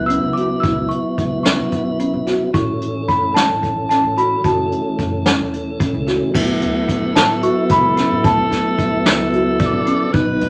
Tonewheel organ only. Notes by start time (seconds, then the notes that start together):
Already playing: F#3 B3 E4
2.53 E3 A3 C#4
4.42 E3 A3 C#4
6.32 F#3 B3 E4
9.60 D5
10.12 F#3 B3 D#4